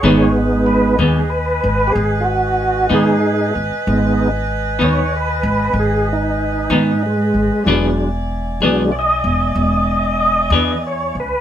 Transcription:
<<
  \new Staff \with { instrumentName = "Horn section" } { \time 12/8 \key gis \minor \tempo 4. = 63 << { gis''1.~ | gis''1.~ | gis''1. | } \\ { <b' dis''>1.~ | <b' dis''>1. | <d'' e''>1. | } >> }
  \new Staff \with { instrumentName = "Tonewheel organ" } { \time 12/8 \key gis \minor <gis' cis''>8 r8 b'8 gis'8 b'4 <g' gis'>8 <eis' fis'>4 <dis' gis'>4 r8 | r4. cis''8 b'4 gis'8 dis'4. gis4~ | gis4 r4 <d'' dis''>2. cis''8 b'8 | }
  \new Staff \with { instrumentName = "Tonewheel organ" } { \time 12/8 \key gis \minor <gis b dis'>4. r1 r8 | <gis b dis'>8 r1 r4. | <fis gis d'>8 r4 <fis gis d'>8 r1 | }
  \new Staff \with { instrumentName = "Clean electric guitar" } { \time 12/8 \key gis \minor <gis, dis b dis'>8 r4 <gis, dis b dis'>8 r2 r8 <gis, dis b dis'>8 r4 | r4. <gis, dis b dis'>8 r2 r8 <gis, dis b dis'>8 r4 | <e b d' gis'>8 r4 <e b d' gis'>8 r2 r8 <e b d' gis'>8 r4 | }
  \new Staff \with { instrumentName = "Upright bass" } { \clef bass \time 12/8 \key gis \minor gis,,4. dis,4 gis,,8 gis,,4. gis,4 gis,,16 r16 | gis,,4. dis,4 gis,,8 gis,,4. gis,4 gis,,16 r16 | e,,4. b,,4 e,,8 e,,4. e,4 cis,16 r16 | }
>>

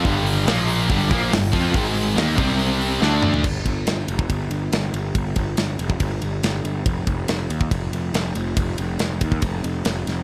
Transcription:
<<
  \new Staff \with { instrumentName = "Distorted electric guitar" } { \clef bass \time 4/4 \key g \minor \tempo 4 = 140 <g, d g>4 <bes, f bes>4 <g, d g>8 <bes, f bes>8 <g, d>8 <f c' f'>8 | <aes, ees aes>4 <ees bes ees'>8 <c g c'>4. <d a d'>4 | r1 | r1 |
r1 | r1 | }
  \new Staff \with { instrumentName = "Distorted electric guitar" } { \clef bass \time 4/4 \key g \minor <g, d g>4 <bes, f bes>4 <g, d g>8 <bes, f bes>8 <g, d>8 <f c' f'>8 | <aes, ees aes>4 <ees bes ees'>8 <c g c'>4. <d a d'>4 | r1 | r1 |
r1 | r1 | }
  \new Staff \with { instrumentName = "Overdriven electric guitar" } { \clef bass \time 4/4 \key g \minor <g, d g>4 <bes, f bes>4 <g, d g>8 <bes, f bes>8 <g, d>8 <f c' f'>8 | <aes, ees aes>4 <ees bes ees'>8 <c g c'>4. <d a d'>4 | r1 | r1 |
r1 | r1 | }
  \new Staff \with { instrumentName = "Picked electric bass" } { \clef bass \time 4/4 \key g \minor g,,4 bes,,4 g,,8 bes,,8 g,,8 f,8 | aes,,4 ees,8 c,4. d,4 | g,,8 g,,8 g,,8 f,,8 g,,8 g,,8 g,,8 g,,8 | g,,8 g,,8 g,,8 f,,8 g,,8 g,,8 g,,8 g,,8 |
f,,8 f,,8 f,,8 ees,8 f,,8 f,,8 f,,8 f,,8 | f,,8 f,,8 f,,8 ees,8 f,,8 f,,8 f,,8 f,,8 | }
  \new DrumStaff \with { instrumentName = "Drums" } \drummode { \time 4/4 <hho bd>8 hho8 <hho sn>8 hho8 <hho bd>8 <hho bd>8 <hho sn>8 <hho bd sn>8 | <hho bd>8 hho8 <hho sn>8 <hho bd>8 hho8 hho8 sn8 toml16 tomfh16 | <cymc bd>8 <bd cymr>8 <cymr sn>8 cymr16 bd16 <bd cymr>8 cymr8 <cymr sn>8 cymr8 | <bd cymr>8 <bd cymr>8 <cymr sn>8 cymr16 bd16 <bd cymr>8 cymr8 <cymr sn>8 cymr8 |
<bd cymr>8 <bd cymr>8 <cymr sn>8 cymr16 bd16 <bd cymr>8 cymr8 <cymr sn>8 cymr8 | <bd cymr>8 cymr8 <cymr sn>8 <bd cymr>16 bd16 <bd cymr>8 cymr8 <cymr sn>8 <cymr sn>8 | }
>>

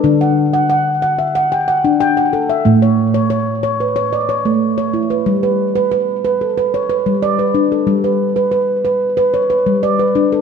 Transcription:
<<
  \new Staff \with { instrumentName = "Handpan" } { \time 4/4 \key g \lydian \tempo 4 = 92 << { a'16 fis''8. fis''8. e''8 g''16 fis''8 g''16 fis''8 e''16~ | e''16 cis''8. cis''8. b'8 d''16 cis''8. cis''8 b'16~ | b'16 b'8. b'8. a'8 cis''16 b'8 d''16 b'8 a'16~ | a'16 b'8. b'8. r8 cis''16 b'8 d''16 b'8 a'16 | } \\ { d'8 r16 fis''8 r16 fis''8 fis''8 r16 d'8 r16 a'8 | a8 r16 cis''8 r16 cis''8 cis''8 r16 a8 r16 e'8 | g8 r16 b'8 r16 b'8 b'8 r16 g8 r16 d'8 | r8. b'8 r16 b'8 b'8 r16 g8 r16 d'8 | } >> }
  \new Staff \with { instrumentName = "Handpan" } { \clef bass \time 4/4 \key g \lydian d1 | a,1 | r1 | g1 | }
>>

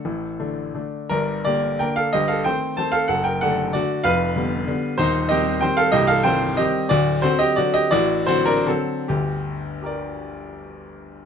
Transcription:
<<
  \new Staff \with { instrumentName = "Grand piano" } { \time 3/4 \key g \minor \tempo 4 = 178 << { <a' fis''>2~ <a' fis''>8 r8 | <d' bes'>4 <g' d''>4 <bes' g''>8 <a' f''>8 | <g' ees''>8 <a' f''>8 <c'' g''>4 <c'' a''>8 <a' f''>8 | <a' fis''>8 <bes' g''>8 <a' fis''>4 <fis' d''>4 |
<b' f''>2. | <ees' c''>4 <g' ees''>4 <c'' g''>8 <a' f''>8 | <g' ees''>8 <a' f''>8 <c'' g''>4 <g' ees''>4 | <fis' d''>4 <fis' c''>8 <g' ees''>8 <fis' d''>8 <g' ees''>8 |
<fis' d''>4 <fis' c''>8 <d' bes'>8 <c' a'>4 | g'2.~ | g'2. | } \\ { r2. | r2. | r2. | r2. |
r2. | r2. | r2. | r2. |
r2. | r2 <g' bes' d''>4~ | <g' bes' d''>2. | } >> }
  \new Staff \with { instrumentName = "Grand piano" } { \clef bass \time 3/4 \key g \minor <a,, a,>4 <d a d'>4 <d a d'>4 | <g,, g,>4 <d bes d'>4 <d bes d'>4 | <g,, g,>4 <ees a c'>4 <ees a c'>4 | <fis,, fis,>4 <d a d'>4 <d a d'>4 |
<f,, f,>4 <d g b>4 <d g b>4 | <ees,, ees,>4 <ees g c'>4 <ees g c'>4 | <c,, c,>4 <ees g c'>4 <ees g c'>4 | <d,, d,>4 <d fis c'>4 <d fis c'>4 |
<a,, a,>4 <d fis c'>4 <d fis>4 | <g,, d,>2.~ | <g,, d,>2. | }
>>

